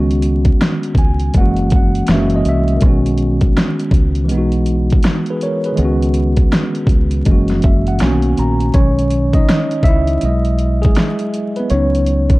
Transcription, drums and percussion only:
0.11 closed hi-hat
0.22 closed hi-hat
0.45 kick, closed hi-hat
0.61 snare, closed hi-hat
0.83 closed hi-hat
0.95 kick, closed hi-hat
1.20 closed hi-hat
1.34 kick, closed hi-hat
1.56 closed hi-hat
1.70 kick, closed hi-hat
1.95 closed hi-hat
2.07 snare, closed hi-hat
2.30 closed hi-hat
2.45 closed hi-hat
2.68 closed hi-hat
2.81 kick, closed hi-hat
3.06 closed hi-hat
3.18 closed hi-hat
3.41 kick, closed hi-hat
3.57 snare, closed hi-hat
3.79 closed hi-hat
3.91 kick, closed hi-hat
4.15 closed hi-hat
4.29 closed hi-hat
4.52 closed hi-hat
4.66 closed hi-hat
4.90 kick, closed hi-hat
5.03 snare, closed hi-hat
5.26 closed hi-hat
5.41 closed hi-hat
5.64 closed hi-hat
5.77 closed hi-hat
6.03 closed hi-hat
6.14 closed hi-hat
6.37 kick, closed hi-hat
6.52 snare, closed hi-hat
6.75 closed hi-hat
6.87 kick, closed hi-hat
7.11 closed hi-hat
7.25 kick, closed hi-hat
7.48 snare, closed hi-hat
7.62 kick, closed hi-hat
7.87 closed hi-hat
7.99 snare, closed hi-hat
8.22 closed hi-hat
8.37 closed hi-hat
8.60 closed hi-hat
8.74 kick, closed hi-hat
8.99 closed hi-hat
9.10 closed hi-hat
9.33 kick, closed hi-hat
9.49 snare, closed hi-hat
9.71 closed hi-hat
9.83 kick, closed hi-hat
10.07 closed hi-hat
10.21 closed hi-hat
10.45 closed hi-hat
10.59 closed hi-hat
10.83 kick, closed hi-hat
10.95 snare, closed hi-hat
11.19 closed hi-hat
11.34 closed hi-hat
11.56 closed hi-hat
11.70 closed hi-hat
11.95 closed hi-hat
12.06 closed hi-hat
12.30 kick, closed hi-hat

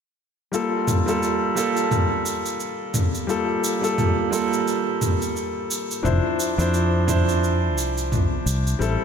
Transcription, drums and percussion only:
0.54 cabasa
0.88 mid tom, cabasa
1.08 cabasa
1.23 cabasa
1.57 cabasa
1.77 cabasa
1.91 mid tom, cabasa
2.26 cabasa
2.46 cabasa
2.60 cabasa
2.94 mid tom, cabasa
3.15 cabasa
3.29 cabasa
3.64 cabasa
3.84 cabasa
3.98 mid tom, cabasa
4.33 cabasa
4.53 cabasa
4.68 cabasa
5.02 mid tom, cabasa
5.22 cabasa
5.37 cabasa
5.71 cabasa
5.91 cabasa
6.05 mid tom, cabasa
6.40 cabasa
6.60 cabasa
6.74 cabasa
7.08 mid tom, cabasa
7.29 cabasa
7.44 cabasa
7.78 cabasa
7.98 cabasa
8.12 mid tom, cabasa
8.47 cabasa
8.67 cabasa
8.82 cabasa

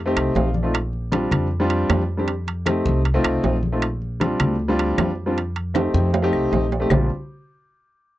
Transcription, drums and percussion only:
0.17 high conga, high timbale, claves
0.35 high conga, low timbale
0.54 high conga
0.74 high timbale, claves
0.93 high conga
1.12 high conga, high timbale, low timbale
1.31 high conga, low conga, high timbale, claves
1.51 high conga
1.70 high conga, high timbale
1.89 high conga, high timbale, low timbale, claves
2.28 high conga, high timbale
2.47 high conga, high timbale
2.66 high conga, high timbale, low timbale, claves
2.86 high conga
3.05 high conga, high timbale
3.24 high conga, high timbale, claves
3.44 high conga, low timbale
3.63 high conga
3.82 high timbale, claves
4.02 high conga
4.21 high conga, high timbale, low timbale
4.40 high conga, low conga, high timbale, claves
4.59 high conga
4.78 high conga, high timbale
4.98 high conga, high timbale, low timbale, claves
5.37 high conga, high timbale
5.56 high conga, high timbale
5.75 high conga, high timbale, claves
5.94 high conga
6.14 high conga, low timbale
6.33 high conga, claves
6.52 high conga, low timbale
6.72 low timbale
6.90 low conga, low timbale, claves

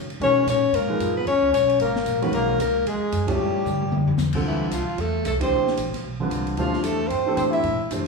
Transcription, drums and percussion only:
0.10 ride
0.21 ride
0.47 hi-hat pedal, ride
0.74 ride
1.00 hi-hat pedal, ride
1.27 ride
1.42 kick
1.54 hi-hat pedal, ride
1.69 ride
1.80 ride
1.96 snare
2.06 hi-hat pedal, ride
2.22 ride
2.33 ride
2.60 hi-hat pedal, ride
2.87 ride
3.12 hi-hat pedal, ride
3.27 kick, ride
3.66 hi-hat pedal, mid tom
3.82 mid tom
3.92 mid tom
4.08 floor tom
4.18 snare, hi-hat pedal
4.33 kick, crash
4.71 hi-hat pedal, ride
4.98 ride
5.25 hi-hat pedal, ride
5.40 kick, ride
5.67 snare
5.77 hi-hat pedal, ride
5.94 snare, ride
6.31 hi-hat pedal, ride
6.47 ride
6.57 ride
6.73 snare
6.84 hi-hat pedal, ride
7.10 ride
7.37 hi-hat pedal, ride
7.53 ride
7.64 ride
7.91 hi-hat pedal, ride

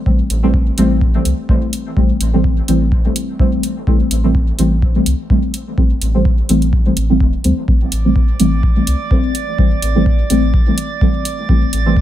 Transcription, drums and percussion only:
0.06 kick
0.30 closed hi-hat
0.54 kick
0.78 closed hi-hat
1.01 kick
1.25 closed hi-hat
1.49 kick
1.73 closed hi-hat
1.97 kick
2.21 closed hi-hat
2.44 kick
2.68 closed hi-hat
2.92 kick
3.16 closed hi-hat
3.40 kick
3.63 closed hi-hat
3.87 kick
4.11 closed hi-hat
4.35 kick
4.59 closed hi-hat
4.82 kick
5.06 closed hi-hat
5.30 kick
5.54 closed hi-hat
5.78 kick
6.02 closed hi-hat
6.25 kick
6.49 closed hi-hat
6.62 closed hi-hat
6.73 kick
6.97 closed hi-hat
7.20 kick
7.44 closed hi-hat
7.68 kick
7.92 closed hi-hat
8.16 kick
8.40 closed hi-hat
8.63 kick
8.87 closed hi-hat
9.11 kick
9.35 closed hi-hat
9.59 kick
9.82 closed hi-hat
10.06 kick
10.30 closed hi-hat
10.54 kick
10.78 closed hi-hat
11.01 kick
11.25 closed hi-hat
11.49 kick
11.73 closed hi-hat
11.97 kick

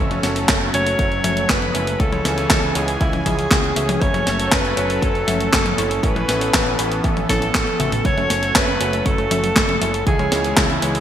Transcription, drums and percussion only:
0.11 closed hi-hat, high tom
0.23 snare, closed hi-hat
0.36 closed hi-hat
0.49 kick, snare, clap, closed hi-hat
0.61 closed hi-hat
0.74 closed hi-hat
0.87 closed hi-hat
0.99 kick, closed hi-hat
1.12 closed hi-hat
1.24 closed hi-hat, high tom
1.37 closed hi-hat
1.49 kick, snare, clap, closed hi-hat
1.62 closed hi-hat, high tom
1.75 closed hi-hat
1.87 closed hi-hat
2.00 kick, closed hi-hat
2.12 closed hi-hat, high tom
2.25 snare, closed hi-hat
2.38 closed hi-hat
2.50 kick, snare, clap, closed hi-hat
2.63 closed hi-hat
2.75 closed hi-hat
2.88 closed hi-hat
3.01 kick, closed hi-hat
3.13 closed hi-hat, high tom
3.26 kick, closed hi-hat, high tom
3.39 closed hi-hat
3.51 kick, snare, clap, closed hi-hat
3.64 closed hi-hat
3.76 closed hi-hat
3.89 closed hi-hat, high tom
4.02 kick, closed hi-hat
4.14 closed hi-hat, high tom
4.27 snare, closed hi-hat
4.40 closed hi-hat
4.52 kick, snare, clap, closed hi-hat
4.65 closed hi-hat
4.77 closed hi-hat
4.90 closed hi-hat
5.02 kick, closed hi-hat
5.15 closed hi-hat
5.28 closed hi-hat, high tom
5.41 closed hi-hat
5.53 kick, snare, clap, closed hi-hat
5.66 closed hi-hat, high tom
5.78 closed hi-hat
5.91 closed hi-hat
6.03 kick, closed hi-hat
6.16 closed hi-hat, high tom
6.29 snare, closed hi-hat
6.41 closed hi-hat
6.54 kick, snare, clap, closed hi-hat
6.67 closed hi-hat
6.79 closed hi-hat
6.92 closed hi-hat
7.04 kick, closed hi-hat
7.17 closed hi-hat, high tom
7.29 kick, snare, closed hi-hat, high tom
7.42 closed hi-hat
7.55 kick, snare, clap, closed hi-hat
7.67 closed hi-hat, high tom
7.80 closed hi-hat, mid tom
7.92 closed hi-hat, mid tom
8.05 kick, closed hi-hat
8.18 closed hi-hat, high tom
8.30 snare, closed hi-hat
8.43 closed hi-hat
8.55 kick, snare, clap, closed hi-hat
8.68 closed hi-hat
8.81 closed hi-hat
8.93 closed hi-hat
9.06 kick, closed hi-hat
9.18 closed hi-hat
9.31 closed hi-hat, high tom
9.44 closed hi-hat
9.56 kick, snare, clap, closed hi-hat
9.69 closed hi-hat, high tom
9.82 closed hi-hat
9.94 closed hi-hat
10.07 kick, closed hi-hat
10.19 closed hi-hat, high tom
10.32 snare, closed hi-hat
10.45 closed hi-hat
10.57 kick, snare, clap, closed hi-hat
10.70 closed hi-hat
10.82 closed hi-hat
10.95 closed hi-hat

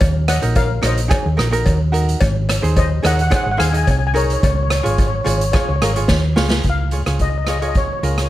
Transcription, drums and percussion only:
0.01 kick, closed hi-hat, cowbell
0.28 cross-stick, closed hi-hat, cowbell
0.42 closed hi-hat
0.56 kick, closed hi-hat, cowbell
0.83 cross-stick, closed hi-hat, cowbell
0.97 closed hi-hat
1.11 kick, cross-stick, closed hi-hat, cowbell
1.39 cross-stick, closed hi-hat
1.53 closed hi-hat
1.66 kick, closed hi-hat, cowbell
1.94 closed hi-hat
2.09 closed hi-hat
2.21 kick, closed hi-hat, cowbell
2.49 cross-stick, closed hi-hat, cowbell
2.64 closed hi-hat
2.76 kick, closed hi-hat, cowbell
3.03 cross-stick, closed hi-hat, cowbell
3.19 closed hi-hat
3.31 kick, cross-stick, closed hi-hat, cowbell
3.60 cross-stick, closed hi-hat
3.74 closed hi-hat
3.87 kick, closed hi-hat, cowbell
4.15 closed hi-hat
4.30 closed hi-hat
4.43 kick, closed hi-hat, cowbell
4.70 cross-stick, closed hi-hat, cowbell
4.86 closed hi-hat
4.98 kick, closed hi-hat, cowbell
5.26 closed hi-hat, cowbell
5.41 closed hi-hat
5.53 kick, cross-stick, closed hi-hat, cowbell
5.82 cross-stick, closed hi-hat
5.96 closed hi-hat
6.08 kick, snare, cowbell
6.37 snare
6.51 snare
6.64 kick, closed hi-hat
6.91 closed hi-hat
7.06 cross-stick, closed hi-hat
7.19 kick, closed hi-hat
7.47 cross-stick, closed hi-hat
7.62 closed hi-hat
7.75 kick, closed hi-hat
8.03 closed hi-hat
8.18 cross-stick, closed hi-hat

